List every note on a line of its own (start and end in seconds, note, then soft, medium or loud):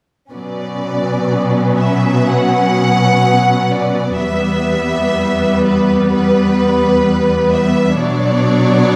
0.32 4.14 B2 soft
0.32 4.14 F#3 soft
0.32 4.14 B3 soft
0.32 4.14 C#4 soft
0.32 4.14 B4 soft
0.32 1.75 D5 soft
1.78 2.25 E5 soft
2.28 3.71 F#5 medium
3.71 4.19 D5 soft
4.17 7.96 E2 soft
4.17 8.00 G3 soft
4.17 7.96 B3 soft
4.17 7.96 B4 soft
4.17 5.60 E5 medium
5.64 6.10 B4 soft
6.11 7.50 B4 medium
7.53 8.01 E5 medium
7.99 8.96 B2 soft
7.99 8.96 F#3 soft
7.99 8.96 B3 soft
7.99 8.96 D4 soft
7.99 8.96 C#5 soft
7.99 8.96 D5 medium